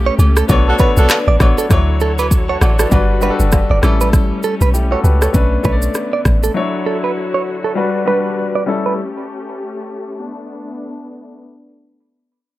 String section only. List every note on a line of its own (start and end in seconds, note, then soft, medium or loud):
0.00 1.68 A3 medium
0.00 0.48 C#4 medium
0.00 0.48 G4 medium
0.49 1.69 B3 medium
0.49 1.69 D4 medium
1.71 2.91 D3 medium
1.71 2.91 E4 medium
1.71 3.81 F#4 medium
1.71 2.91 C#5 medium
2.92 5.32 G3 medium
2.92 3.82 D4 medium
2.92 3.82 B4 medium
3.83 5.33 A3 medium
3.83 5.33 C#4 medium
5.34 7.74 D3 medium
5.34 6.54 A3 medium
5.34 6.54 B3 medium
6.55 7.75 E4 medium
6.55 8.65 F#4 medium
6.55 7.75 C#5 medium
7.77 8.67 G3 medium
7.77 8.67 D4 medium
7.77 8.67 B4 medium
8.68 11.38 A3 medium
8.68 10.18 C#4 medium
8.68 10.18 G4 medium
10.19 11.39 B3 medium
10.19 11.39 D4 medium